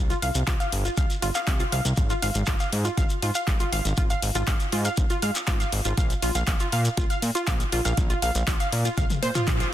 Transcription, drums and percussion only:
0.10 closed hi-hat, shekere
0.22 open hi-hat
0.35 closed hi-hat, shekere
0.47 kick, clap, closed hi-hat, shekere
0.60 closed hi-hat, shekere
0.72 open hi-hat
0.85 closed hi-hat, shekere
0.97 kick, closed hi-hat, shekere
1.10 closed hi-hat, shekere
1.22 open hi-hat
1.35 clap, closed hi-hat, shekere
1.47 kick, clap, closed hi-hat, shekere
1.60 closed hi-hat, shekere
1.72 open hi-hat
1.85 closed hi-hat, shekere
1.97 kick, closed hi-hat, shekere
2.10 closed hi-hat, shekere
2.22 open hi-hat
2.35 closed hi-hat, shekere
2.46 kick, clap, closed hi-hat, shekere
2.60 closed hi-hat, shekere
2.73 open hi-hat
2.85 closed hi-hat, shekere
2.98 kick, closed hi-hat, shekere
3.09 closed hi-hat, shekere
3.22 open hi-hat
3.35 closed hi-hat, shekere
3.48 kick, clap, closed hi-hat, shekere
3.60 closed hi-hat, shekere
3.73 open hi-hat
3.85 closed hi-hat, shekere
3.97 kick, closed hi-hat, shekere
4.10 closed hi-hat, shekere
4.22 open hi-hat
4.35 closed hi-hat, shekere
4.47 kick, clap, closed hi-hat, shekere
4.60 closed hi-hat, shekere
4.72 open hi-hat
4.85 closed hi-hat, shekere
4.97 kick, closed hi-hat, shekere
5.10 closed hi-hat, shekere
5.22 open hi-hat
5.35 clap, closed hi-hat, shekere
5.47 kick, clap, closed hi-hat, shekere
5.60 closed hi-hat, shekere
5.72 open hi-hat
5.85 closed hi-hat, shekere
5.97 kick, closed hi-hat, shekere
6.10 closed hi-hat, shekere
6.22 open hi-hat
6.35 closed hi-hat, shekere
6.47 kick, clap, closed hi-hat, shekere
6.60 closed hi-hat, shekere
6.72 open hi-hat
6.85 closed hi-hat, shekere
6.97 kick, closed hi-hat, shekere
7.10 closed hi-hat, shekere
7.22 open hi-hat
7.35 closed hi-hat, shekere
7.47 kick, clap, closed hi-hat, shekere
7.60 closed hi-hat, shekere
7.72 open hi-hat
7.85 closed hi-hat, shekere
7.97 kick, closed hi-hat, shekere
8.10 closed hi-hat, shekere
8.22 open hi-hat
8.35 closed hi-hat, shekere
8.47 kick, clap, closed hi-hat, shekere
8.60 closed hi-hat, shekere
8.72 open hi-hat
8.85 closed hi-hat, shekere
8.97 kick, closed hi-hat, high tom, shekere
9.10 closed hi-hat, high tom, shekere
9.23 open hi-hat
9.35 clap, closed hi-hat, mid tom, shekere
9.47 kick, clap, closed hi-hat, mid tom, shekere
9.60 closed hi-hat, shekere

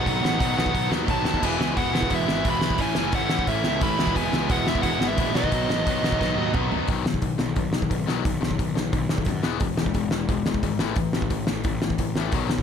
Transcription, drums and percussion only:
0.06 kick, open hi-hat
0.25 snare
0.41 kick, open hi-hat
0.59 snare
0.66 kick
0.75 kick, open hi-hat
0.92 snare
1.08 kick, open hi-hat
1.25 snare
1.34 kick
1.43 kick, crash
1.61 snare
1.77 kick, open hi-hat
1.95 snare
2.03 kick
2.10 kick, open hi-hat
2.29 snare
2.45 kick, open hi-hat
2.61 snare
2.70 kick
2.78 kick, open hi-hat
2.95 snare
3.12 kick, open hi-hat
3.29 snare
3.39 kick
3.47 kick, open hi-hat
3.64 snare
3.81 kick, open hi-hat
3.99 snare
4.07 kick
4.16 kick, open hi-hat
4.33 snare
4.50 kick, open hi-hat
4.67 snare
4.75 kick
4.83 kick, open hi-hat
5.01 snare
5.18 kick, open hi-hat
5.35 snare
5.44 kick
5.52 kick, open hi-hat
5.70 snare
5.87 kick, open hi-hat
6.04 snare
6.12 kick
6.21 kick, snare
6.38 high tom
6.54 kick, mid tom
6.72 floor tom
6.88 kick, open hi-hat
7.06 snare
7.14 kick
7.22 kick, open hi-hat
7.39 snare
7.56 kick, open hi-hat
7.73 snare
7.82 kick
7.91 kick, open hi-hat
8.09 snare
8.25 kick, open hi-hat
8.43 snare
8.51 kick
8.59 kick, open hi-hat
8.77 snare
8.93 kick, open hi-hat
9.09 snare
9.18 kick
9.25 kick, open hi-hat
9.44 snare
9.60 kick, open hi-hat
9.77 snare
9.86 kick
9.94 kick, open hi-hat
10.11 snare
10.29 kick, open hi-hat
10.46 snare
10.54 kick
10.63 kick, open hi-hat
10.79 snare
10.96 kick, open hi-hat
11.13 snare
11.22 kick
11.30 kick, open hi-hat
11.47 snare
11.64 kick, open hi-hat
11.82 snare
11.90 kick
11.98 kick, open hi-hat
12.16 snare
12.32 kick, open hi-hat
12.50 snare
12.58 kick

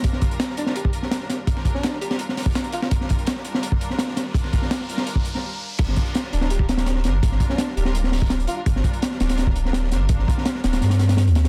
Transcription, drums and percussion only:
0.04 kick, closed hi-hat
0.13 snare
0.21 kick, closed hi-hat
0.31 closed hi-hat
0.40 snare, closed hi-hat
0.49 snare
0.57 closed hi-hat
0.66 snare
0.76 closed hi-hat
0.85 kick
0.93 closed hi-hat
1.03 snare
1.11 snare, closed hi-hat, open hi-hat
1.21 snare
1.29 snare, closed hi-hat
1.47 kick, closed hi-hat
1.57 snare
1.65 kick, closed hi-hat
1.75 snare
1.83 snare, closed hi-hat
1.93 snare
2.01 closed hi-hat
2.11 snare, closed hi-hat
2.19 closed hi-hat
2.29 snare
2.37 snare, closed hi-hat, open hi-hat
2.46 kick
2.55 snare, closed hi-hat
2.64 closed hi-hat
2.72 snare, closed hi-hat
2.82 snare
2.91 kick, closed hi-hat
3.01 snare
3.09 kick, closed hi-hat
3.19 closed hi-hat
3.27 snare, closed hi-hat
3.36 snare
3.45 closed hi-hat
3.54 snare
3.63 closed hi-hat
3.72 kick
3.81 closed hi-hat
3.90 snare
3.99 snare, closed hi-hat, open hi-hat
4.08 snare
4.17 snare, closed hi-hat
4.34 kick, closed hi-hat
4.44 snare
4.53 kick, closed hi-hat
4.62 snare
4.71 snare, closed hi-hat
4.80 snare
4.89 closed hi-hat
4.98 snare, closed hi-hat
5.07 closed hi-hat
5.15 kick
5.25 closed hi-hat
5.35 snare
5.78 kick, closed hi-hat, crash
5.88 snare
5.96 kick, closed hi-hat
6.06 closed hi-hat
6.15 snare, closed hi-hat
6.24 snare
6.33 closed hi-hat
6.41 snare
6.50 closed hi-hat
6.59 kick
6.69 snare, closed hi-hat
6.77 snare, closed hi-hat
6.86 snare, closed hi-hat
6.96 snare
7.04 snare, closed hi-hat
7.23 kick, closed hi-hat
7.32 snare
7.40 kick, closed hi-hat
7.50 snare
7.58 snare, closed hi-hat
7.67 snare
7.77 closed hi-hat
7.85 snare
7.95 closed hi-hat
8.04 snare
8.12 snare, open hi-hat
8.22 kick
8.30 snare, closed hi-hat
8.40 closed hi-hat
8.47 closed hi-hat
8.66 kick, closed hi-hat
8.76 snare
8.84 kick, closed hi-hat
8.93 closed hi-hat
9.02 snare, closed hi-hat
9.11 snare
9.20 snare, closed hi-hat
9.29 snare, closed hi-hat
9.37 snare, closed hi-hat
9.47 kick
9.56 closed hi-hat
9.65 snare
9.73 snare, closed hi-hat
9.84 snare
9.91 snare, closed hi-hat
10.09 kick, closed hi-hat
10.19 snare
10.28 kick, closed hi-hat
10.38 snare
10.45 snare, closed hi-hat
10.55 snare
10.64 snare, closed hi-hat
10.73 snare, closed hi-hat
10.81 snare, closed hi-hat
10.90 snare, closed hi-hat
10.99 snare, closed hi-hat
11.09 snare, closed hi-hat
11.17 snare, closed hi-hat
11.28 closed hi-hat
11.35 snare, closed hi-hat
11.45 snare, closed hi-hat

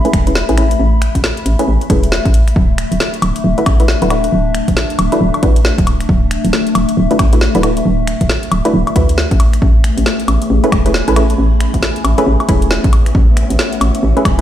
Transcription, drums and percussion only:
0.05 closed hi-hat
0.13 finger snap, kick, closed hi-hat
0.27 closed hi-hat
0.35 snare
0.49 closed hi-hat
0.58 finger snap, closed hi-hat
0.71 closed hi-hat
1.02 finger snap, closed hi-hat
1.15 kick, closed hi-hat
1.24 snare
1.37 closed hi-hat
1.46 closed hi-hat
1.59 closed hi-hat
1.81 closed hi-hat
1.90 kick, closed hi-hat
2.03 closed hi-hat
2.12 snare
2.25 kick, closed hi-hat
2.34 closed hi-hat
2.48 finger snap, closed hi-hat
2.56 kick
2.78 finger snap, closed hi-hat
2.92 closed hi-hat
3.00 snare
3.14 closed hi-hat
3.22 closed hi-hat, high woodblock
3.36 closed hi-hat
3.58 closed hi-hat
3.66 finger snap, kick, closed hi-hat, high woodblock
3.80 closed hi-hat
3.88 snare
4.02 closed hi-hat
4.10 finger snap, closed hi-hat, high woodblock
4.24 closed hi-hat
4.55 finger snap, closed hi-hat
4.68 kick, closed hi-hat
4.77 snare
4.90 closed hi-hat
4.99 closed hi-hat, high woodblock
5.12 closed hi-hat
5.34 closed hi-hat, high woodblock
5.43 kick, closed hi-hat
5.56 closed hi-hat
5.65 snare
5.78 kick, closed hi-hat
5.87 closed hi-hat, high woodblock
6.00 finger snap, closed hi-hat
6.09 kick
6.31 finger snap, closed hi-hat
6.45 closed hi-hat
6.53 snare
6.67 closed hi-hat
6.75 closed hi-hat, high woodblock
6.89 closed hi-hat
7.11 closed hi-hat
7.19 finger snap, kick, closed hi-hat, high woodblock
7.33 closed hi-hat
7.41 snare
7.55 closed hi-hat
7.63 finger snap, closed hi-hat, high woodblock
7.77 closed hi-hat
8.07 finger snap, closed hi-hat
8.21 kick, closed hi-hat
8.30 snare
8.43 closed hi-hat
8.52 closed hi-hat, high woodblock
8.65 closed hi-hat
8.87 closed hi-hat, high woodblock
8.96 kick, closed hi-hat
9.09 closed hi-hat
9.18 snare
9.31 kick, closed hi-hat
9.40 closed hi-hat, high woodblock
9.53 finger snap, closed hi-hat
9.62 kick
9.84 finger snap, closed hi-hat
9.98 closed hi-hat
10.06 snare
10.20 closed hi-hat
10.28 closed hi-hat, high woodblock
10.42 closed hi-hat
10.64 closed hi-hat
10.72 finger snap, kick, closed hi-hat, high woodblock
10.86 closed hi-hat
10.94 snare
11.08 closed hi-hat
11.16 finger snap, closed hi-hat, high woodblock
11.30 closed hi-hat
11.61 finger snap, closed hi-hat
11.74 kick, closed hi-hat
11.83 snare
11.96 closed hi-hat
12.05 closed hi-hat, high woodblock
12.18 closed hi-hat
12.40 closed hi-hat, high woodblock
12.49 kick, closed hi-hat
12.62 closed hi-hat
12.71 snare
12.84 kick, closed hi-hat
12.93 closed hi-hat, high woodblock
13.06 finger snap, closed hi-hat
13.15 kick
13.37 finger snap, closed hi-hat
13.50 closed hi-hat
13.59 snare
13.73 closed hi-hat
13.81 closed hi-hat, high woodblock
13.95 closed hi-hat
14.17 closed hi-hat
14.25 finger snap, kick, closed hi-hat, high woodblock

